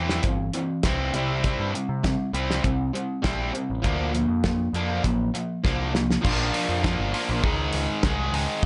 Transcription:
Already playing: picked electric bass E2, distorted electric guitar E3 C4 E4
0.09 snare
0.23 picked electric bass G1, distorted electric guitar E3 C4, kick, closed hi-hat
0.54 distorted electric guitar E3 C4, closed hi-hat
0.83 picked electric bass C2, distorted electric guitar E3 C4 E4, kick, snare, closed hi-hat
1.13 picked electric bass C2, distorted electric guitar G3 C4 E4, closed hi-hat
1.44 distorted electric guitar G3 C4 E4, kick, closed hi-hat
1.59 picked electric bass G2
1.74 distorted electric guitar G3 C4, closed hi-hat
1.89 picked electric bass C3
2.04 distorted electric guitar G3 C4, kick, snare, closed hi-hat
2.33 picked electric bass C2, distorted electric guitar G3 C4 E4, closed hi-hat
2.51 snare
2.63 picked electric bass C2, distorted electric guitar G3 C4, kick, closed hi-hat
2.94 distorted electric guitar G3 C4, closed hi-hat
3.23 picked electric bass A#1, distorted electric guitar G3 C4 E4, kick, snare, closed hi-hat
3.54 distorted electric guitar G3 C4, closed hi-hat
3.70 picked electric bass A1
3.83 picked electric bass D2, distorted electric guitar F3 A#3 D4, kick, closed hi-hat
3.99 picked electric bass D2
4.13 distorted electric guitar F3 A#3, closed hi-hat
4.28 picked electric bass F2
4.44 distorted electric guitar F3 A#3, kick, snare, closed hi-hat
4.73 picked electric bass F2, distorted electric guitar F3 A#3 D4, closed hi-hat
5.04 picked electric bass A1, distorted electric guitar F3 A#3, kick, closed hi-hat
5.34 distorted electric guitar F3 A#3, closed hi-hat
5.64 picked electric bass C2, distorted electric guitar F3 A#3 D4, kick, snare
5.93 distorted electric guitar F3 A#3, snare
6.11 snare
6.21 picked electric bass A#1, distorted electric guitar F3 A#3 D4 F4, kick
6.26 crash
6.54 open hi-hat
6.69 picked electric bass F2
6.82 distorted electric guitar F3 A#3 D4 F4, kick, snare
6.99 picked electric bass G1
7.12 distorted electric guitar F3 A#3 D4 F4, open hi-hat
7.29 picked electric bass A#1
7.42 picked electric bass C#2, distorted electric guitar D#3 G#3 D#4 G#4, kick
7.73 picked electric bass C#2, open hi-hat
8.03 picked electric bass C2, distorted electric guitar D#3 G#3 D#4 G#4, kick, snare
8.33 picked electric bass C#2, distorted electric guitar D#3 G#3 D#4 G#4, open hi-hat

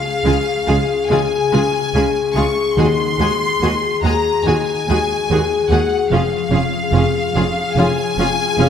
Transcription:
Already playing: harp C#3 G#3 C#4 F4, violin section F5
0.03 harp G#4
0.24 double bass section C#2, cello section C#3, viola section G#3 F4, harp C#4, violin section G#4 G#5
0.46 harp C#5
0.67 double bass section C#2, cello section C#3, viola section G#3 F4, harp G#4, violin section G#4 G#5
0.89 harp C#4
1.09 double bass section C#2, harp C#3, cello section C#3, viola section G#3 F4, violin section G#4 G#5
1.31 harp G#3
1.52 double bass section C#2, cello section C#3, viola section G#3 F4, harp C#4, violin section G#4 G#5
1.74 harp G#4
1.95 double bass section C#2, cello section C#3, viola section G#3 F4, harp C#4, violin section G#4 G#5
2.15 harp C#5
2.35 double bass section C#2, cello section C#3, viola section G#3 F4, violin section G#4 G#5 C#6, harp G#4
2.57 harp C#4
2.76 double bass section D#2, cello section D#2, harp D#3, timpani D#3, viola section G#3 F#4, violin section G#4 G#5 C6
2.98 harp D#4
3.19 double bass section D#2, cello section D#2, viola section G#3 F#4, harp G#3, violin section G#4 G#5
3.40 harp F#4
3.61 cello section D#2, double bass section D#2, viola section G#3 F#4, harp G#4, violin section G#4 G#5
3.82 harp F#4
4.03 double bass section D#2, cello section D#2, viola section G#3 F#4, harp G#4, violin section G#4 G#5 A#5
4.25 harp F#4
4.46 double bass section D#2, cello section D#2, harp D#3, viola section G#3 F#4, violin section G#4 G#5
4.68 harp D#4
4.88 cello section D#2, double bass section D#2, viola section G#3 F#4, violin section G#4 G#5
5.10 harp F#4
5.29 double bass section D#2, cello section D#2, viola section G#3 F#4, harp G#4, violin section G#4 G#5
5.51 harp F#4
5.70 double bass section D#2, cello section D#2, viola section G#3 F#4, harp G#4, violin section G#4 F#5 G#5
5.91 harp F#4
6.11 double bass section F1, cello section F2, harp F3, viola section C#4 F4, violin section G#4 F5
6.31 harp C#4
6.51 double bass section F1, cello section F2, viola section C#4 F4, harp F4, violin section G#4 F5
6.71 harp G#4
6.92 double bass section F1, cello section F2, viola section C#4 F4, violin section G#4 F5, harp C#5
7.13 harp F5
7.34 double bass section F1, cello section F2, viola section C#4 F4, violin section G#4 F5, harp C#5
7.56 harp G#4
7.77 double bass section F1, cello section F2, harp F3, viola section C#4 F4, violin section G#4 F5 G#5
7.98 harp C#4
8.18 double bass section F1, cello section F2, viola section C#4 F4, harp F4, violin section G#4 F5
8.39 harp G#4
8.58 double bass section F1, cello section F2, viola section C#4 F4, violin section G#4 F5, harp C#5

